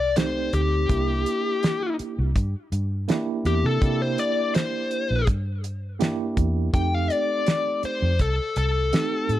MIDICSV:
0, 0, Header, 1, 6, 480
1, 0, Start_track
1, 0, Tempo, 730816
1, 587, Time_signature, 4, 2, 24, 8
1, 6171, End_track
2, 0, Start_track
2, 0, Title_t, "Lead electric guitar"
2, 0, Program_c, 0, 29
2, 0, Note_on_c, 0, 74, 83
2, 105, Note_off_c, 0, 74, 0
2, 112, Note_on_c, 0, 72, 86
2, 342, Note_off_c, 0, 72, 0
2, 355, Note_on_c, 0, 67, 90
2, 1284, Note_off_c, 0, 67, 0
2, 2276, Note_on_c, 0, 67, 90
2, 2404, Note_off_c, 0, 67, 0
2, 2404, Note_on_c, 0, 69, 72
2, 2631, Note_off_c, 0, 69, 0
2, 2640, Note_on_c, 0, 72, 77
2, 2754, Note_off_c, 0, 72, 0
2, 2754, Note_on_c, 0, 74, 86
2, 2982, Note_off_c, 0, 74, 0
2, 2990, Note_on_c, 0, 72, 87
2, 3453, Note_off_c, 0, 72, 0
2, 4430, Note_on_c, 0, 79, 100
2, 4561, Note_off_c, 0, 79, 0
2, 4561, Note_on_c, 0, 77, 75
2, 4675, Note_off_c, 0, 77, 0
2, 4675, Note_on_c, 0, 74, 80
2, 5136, Note_off_c, 0, 74, 0
2, 5157, Note_on_c, 0, 72, 80
2, 5384, Note_off_c, 0, 72, 0
2, 5393, Note_on_c, 0, 69, 81
2, 5622, Note_off_c, 0, 69, 0
2, 5633, Note_on_c, 0, 69, 88
2, 6171, Note_off_c, 0, 69, 0
2, 6171, End_track
3, 0, Start_track
3, 0, Title_t, "Tine electric piano"
3, 0, Program_c, 1, 4
3, 108, Note_on_c, 1, 57, 68
3, 109, Note_on_c, 1, 60, 59
3, 111, Note_on_c, 1, 63, 66
3, 114, Note_on_c, 1, 67, 68
3, 564, Note_off_c, 1, 57, 0
3, 565, Note_off_c, 1, 60, 0
3, 566, Note_off_c, 1, 63, 0
3, 567, Note_off_c, 1, 67, 0
3, 585, Note_on_c, 1, 58, 68
3, 586, Note_on_c, 1, 62, 59
3, 592, Note_on_c, 1, 64, 64
3, 593, Note_on_c, 1, 67, 77
3, 1499, Note_off_c, 1, 58, 0
3, 1500, Note_off_c, 1, 62, 0
3, 1503, Note_off_c, 1, 64, 0
3, 1504, Note_off_c, 1, 67, 0
3, 2023, Note_on_c, 1, 58, 80
3, 2030, Note_on_c, 1, 62, 71
3, 2030, Note_on_c, 1, 64, 75
3, 2032, Note_on_c, 1, 67, 86
3, 2481, Note_off_c, 1, 58, 0
3, 2485, Note_off_c, 1, 62, 0
3, 2485, Note_off_c, 1, 64, 0
3, 2486, Note_off_c, 1, 67, 0
3, 2503, Note_on_c, 1, 58, 67
3, 2503, Note_on_c, 1, 62, 66
3, 2506, Note_on_c, 1, 64, 65
3, 2511, Note_on_c, 1, 67, 82
3, 3418, Note_off_c, 1, 58, 0
3, 3418, Note_off_c, 1, 62, 0
3, 3419, Note_off_c, 1, 64, 0
3, 3422, Note_off_c, 1, 67, 0
3, 3936, Note_on_c, 1, 58, 73
3, 3939, Note_on_c, 1, 62, 75
3, 3943, Note_on_c, 1, 64, 70
3, 3943, Note_on_c, 1, 67, 94
3, 4397, Note_off_c, 1, 58, 0
3, 4399, Note_off_c, 1, 62, 0
3, 4401, Note_off_c, 1, 64, 0
3, 4401, Note_off_c, 1, 67, 0
3, 4421, Note_on_c, 1, 57, 76
3, 4421, Note_on_c, 1, 60, 64
3, 4424, Note_on_c, 1, 63, 67
3, 4429, Note_on_c, 1, 67, 77
3, 5337, Note_off_c, 1, 57, 0
3, 5337, Note_off_c, 1, 60, 0
3, 5339, Note_off_c, 1, 63, 0
3, 5341, Note_off_c, 1, 67, 0
3, 5864, Note_on_c, 1, 57, 62
3, 5865, Note_on_c, 1, 60, 62
3, 5868, Note_on_c, 1, 63, 64
3, 5869, Note_on_c, 1, 67, 70
3, 6171, Note_off_c, 1, 57, 0
3, 6171, Note_off_c, 1, 60, 0
3, 6171, Note_off_c, 1, 63, 0
3, 6171, Note_off_c, 1, 67, 0
3, 6171, End_track
4, 0, Start_track
4, 0, Title_t, "Fingered electric bass"
4, 0, Program_c, 2, 33
4, 0, Note_on_c, 2, 36, 87
4, 321, Note_off_c, 2, 36, 0
4, 349, Note_on_c, 2, 38, 83
4, 574, Note_off_c, 2, 38, 0
4, 588, Note_on_c, 2, 36, 90
4, 814, Note_off_c, 2, 36, 0
4, 1435, Note_on_c, 2, 36, 91
4, 1541, Note_off_c, 2, 36, 0
4, 1547, Note_on_c, 2, 43, 90
4, 1666, Note_off_c, 2, 43, 0
4, 1786, Note_on_c, 2, 43, 88
4, 2012, Note_off_c, 2, 43, 0
4, 2266, Note_on_c, 2, 40, 93
4, 2385, Note_off_c, 2, 40, 0
4, 2390, Note_on_c, 2, 48, 93
4, 2498, Note_off_c, 2, 48, 0
4, 2508, Note_on_c, 2, 48, 86
4, 2733, Note_off_c, 2, 48, 0
4, 3353, Note_on_c, 2, 34, 77
4, 3459, Note_off_c, 2, 34, 0
4, 3464, Note_on_c, 2, 43, 78
4, 4158, Note_off_c, 2, 43, 0
4, 4184, Note_on_c, 2, 40, 80
4, 4411, Note_off_c, 2, 40, 0
4, 4425, Note_on_c, 2, 41, 92
4, 4652, Note_off_c, 2, 41, 0
4, 5269, Note_on_c, 2, 41, 97
4, 5378, Note_off_c, 2, 41, 0
4, 5383, Note_on_c, 2, 36, 94
4, 5503, Note_off_c, 2, 36, 0
4, 5625, Note_on_c, 2, 36, 78
4, 5851, Note_off_c, 2, 36, 0
4, 6102, Note_on_c, 2, 45, 92
4, 6171, Note_off_c, 2, 45, 0
4, 6171, End_track
5, 0, Start_track
5, 0, Title_t, "Muted fingered electric bass strokes"
5, 1311, Note_on_c, 9, 29, 34
5, 1377, Note_off_c, 9, 29, 0
5, 5146, Note_on_c, 9, 29, 34
5, 5211, Note_off_c, 9, 29, 0
5, 6171, End_track
6, 0, Start_track
6, 0, Title_t, "Drums"
6, 107, Note_on_c, 9, 42, 93
6, 117, Note_on_c, 9, 38, 108
6, 173, Note_off_c, 9, 42, 0
6, 183, Note_off_c, 9, 38, 0
6, 348, Note_on_c, 9, 42, 59
6, 413, Note_off_c, 9, 42, 0
6, 588, Note_on_c, 9, 36, 93
6, 588, Note_on_c, 9, 42, 82
6, 653, Note_off_c, 9, 36, 0
6, 654, Note_off_c, 9, 42, 0
6, 829, Note_on_c, 9, 42, 64
6, 895, Note_off_c, 9, 42, 0
6, 1069, Note_on_c, 9, 42, 70
6, 1079, Note_on_c, 9, 38, 101
6, 1135, Note_off_c, 9, 42, 0
6, 1145, Note_off_c, 9, 38, 0
6, 1309, Note_on_c, 9, 42, 54
6, 1375, Note_off_c, 9, 42, 0
6, 1547, Note_on_c, 9, 36, 78
6, 1548, Note_on_c, 9, 42, 72
6, 1613, Note_off_c, 9, 36, 0
6, 1614, Note_off_c, 9, 42, 0
6, 1788, Note_on_c, 9, 42, 63
6, 1854, Note_off_c, 9, 42, 0
6, 2027, Note_on_c, 9, 42, 77
6, 2037, Note_on_c, 9, 38, 112
6, 2092, Note_off_c, 9, 42, 0
6, 2102, Note_off_c, 9, 38, 0
6, 2268, Note_on_c, 9, 42, 55
6, 2334, Note_off_c, 9, 42, 0
6, 2507, Note_on_c, 9, 36, 104
6, 2509, Note_on_c, 9, 42, 70
6, 2573, Note_off_c, 9, 36, 0
6, 2575, Note_off_c, 9, 42, 0
6, 2747, Note_on_c, 9, 42, 58
6, 2812, Note_off_c, 9, 42, 0
6, 2986, Note_on_c, 9, 42, 74
6, 2995, Note_on_c, 9, 38, 99
6, 3051, Note_off_c, 9, 42, 0
6, 3061, Note_off_c, 9, 38, 0
6, 3224, Note_on_c, 9, 42, 50
6, 3290, Note_off_c, 9, 42, 0
6, 3462, Note_on_c, 9, 42, 84
6, 3464, Note_on_c, 9, 36, 84
6, 3528, Note_off_c, 9, 42, 0
6, 3530, Note_off_c, 9, 36, 0
6, 3704, Note_on_c, 9, 42, 65
6, 3770, Note_off_c, 9, 42, 0
6, 3945, Note_on_c, 9, 42, 80
6, 3954, Note_on_c, 9, 38, 112
6, 4010, Note_off_c, 9, 42, 0
6, 4020, Note_off_c, 9, 38, 0
6, 4184, Note_on_c, 9, 42, 61
6, 4185, Note_on_c, 9, 36, 69
6, 4250, Note_off_c, 9, 36, 0
6, 4250, Note_off_c, 9, 42, 0
6, 4424, Note_on_c, 9, 36, 106
6, 4425, Note_on_c, 9, 42, 71
6, 4490, Note_off_c, 9, 36, 0
6, 4491, Note_off_c, 9, 42, 0
6, 4664, Note_on_c, 9, 42, 62
6, 4730, Note_off_c, 9, 42, 0
6, 4903, Note_on_c, 9, 42, 82
6, 4913, Note_on_c, 9, 38, 98
6, 4969, Note_off_c, 9, 42, 0
6, 4978, Note_off_c, 9, 38, 0
6, 5143, Note_on_c, 9, 42, 50
6, 5209, Note_off_c, 9, 42, 0
6, 5381, Note_on_c, 9, 42, 78
6, 5383, Note_on_c, 9, 36, 85
6, 5447, Note_off_c, 9, 42, 0
6, 5448, Note_off_c, 9, 36, 0
6, 5622, Note_on_c, 9, 42, 65
6, 5688, Note_off_c, 9, 42, 0
6, 5864, Note_on_c, 9, 42, 78
6, 5873, Note_on_c, 9, 38, 111
6, 5929, Note_off_c, 9, 42, 0
6, 5939, Note_off_c, 9, 38, 0
6, 6103, Note_on_c, 9, 42, 56
6, 6169, Note_off_c, 9, 42, 0
6, 6171, End_track
0, 0, End_of_file